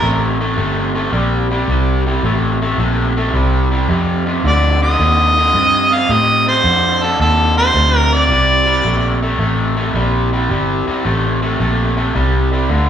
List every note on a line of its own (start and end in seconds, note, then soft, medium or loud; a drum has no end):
0.00 0.56 A1 medium
0.00 0.36 C3 medium
0.00 0.37 A3 medium
0.00 0.37 A#4 medium
0.40 0.56 C3 medium
0.40 0.57 A3 medium
0.58 1.11 G1 medium
0.58 0.91 C3 medium
0.58 0.91 A3 medium
0.95 1.11 C3 medium
0.95 1.11 A3 medium
1.12 1.66 A#1 medium
1.12 1.46 C3 medium
1.12 1.47 G3 medium
1.51 1.67 C3 medium
1.51 1.67 G3 medium
1.68 2.21 C2 medium
1.68 2.02 C3 medium
1.68 2.03 G3 medium
2.06 2.22 C3 medium
2.06 2.22 G3 medium
2.23 2.77 A1 medium
2.23 2.57 C3 medium
2.23 2.58 A3 medium
2.62 2.77 C3 medium
2.62 2.77 A3 medium
2.78 3.32 A#1 medium
2.78 3.12 C3 medium
2.78 3.13 A3 medium
3.17 3.32 C3 medium
3.17 3.32 A3 medium
3.34 3.87 C2 medium
3.34 3.67 C3 medium
3.34 3.68 G3 medium
3.71 3.87 C3 medium
3.71 3.87 G3 medium
3.89 4.42 F2 medium
3.89 4.22 F2 medium
3.89 4.23 C3 medium
4.26 4.42 F2 medium
4.26 4.42 C3 medium
4.44 4.97 D2 medium
4.44 4.78 F2 medium
4.44 4.78 D3 medium
4.44 4.80 D5 medium
4.82 4.97 F2 medium
4.82 4.98 D3 medium
4.82 5.96 D#5 loud
4.99 5.53 D#2 medium
4.99 5.33 F2 medium
4.99 5.33 D3 medium
5.37 5.52 F2 medium
5.37 5.53 D3 medium
5.53 5.87 F2 medium
5.53 6.08 G2 medium
5.53 5.88 C3 medium
5.91 6.07 F2 medium
5.91 6.08 C3 medium
5.91 6.13 F5 loud
6.09 6.43 F2 medium
6.09 6.63 A2 medium
6.09 6.43 C3 medium
6.09 6.47 D#5 loud
6.46 6.62 F2 medium
6.46 6.63 C3 medium
6.46 7.05 C5 loud
6.64 6.98 F2 medium
6.64 7.18 F2 medium
6.64 6.98 D3 medium
7.02 7.18 F2 medium
7.02 7.18 D3 medium
7.02 7.20 A4 medium
7.19 7.73 D#2 medium
7.19 7.53 F2 medium
7.19 7.54 D3 medium
7.19 7.55 A4 medium
7.56 7.73 F2 medium
7.56 7.73 D3 medium
7.56 7.97 C5 loud
7.74 8.28 D2 medium
7.74 8.08 F2 medium
7.74 8.08 C3 medium
7.97 8.15 A#4 loud
8.12 8.28 F2 medium
8.12 8.28 C3 medium
8.12 9.23 D5 medium
8.29 8.83 C2 medium
8.29 8.64 C3 medium
8.29 8.64 G3 medium
8.66 8.83 C3 medium
8.66 8.83 G3 medium
8.84 9.38 A#1 medium
8.84 9.18 C3 medium
8.84 9.19 A3 medium
9.22 9.38 C3 medium
9.22 9.39 A3 medium
9.39 9.93 A1 medium
9.39 9.74 C3 medium
9.39 9.74 A3 medium
9.77 9.93 C3 medium
9.77 9.93 A3 medium
9.94 10.48 A#1 medium
9.94 10.29 C3 medium
9.94 10.29 G3 medium
10.33 10.49 C3 medium
10.33 10.49 G3 medium
10.50 10.85 G1 medium
10.50 10.84 C3 medium
10.50 10.84 G3 medium
10.87 11.04 C3 medium
10.87 11.04 G3 medium
10.87 muted fingered electric bass stroke soft
11.05 11.59 A1 medium
11.05 11.39 C3 medium
11.05 11.39 A3 medium
11.42 11.59 C3 medium
11.42 11.59 A3 medium
11.60 12.14 A#1 medium
11.60 11.94 C3 medium
11.60 11.94 A3 medium
11.97 12.13 C3 medium
11.97 12.14 A3 medium
12.15 12.69 C2 medium
12.15 12.49 C3 medium
12.15 12.49 G3 medium
12.52 12.69 C3 medium
12.52 12.69 G3 medium
12.69 12.89 D2 medium
12.69 12.89 G2 medium
12.69 12.89 D3 medium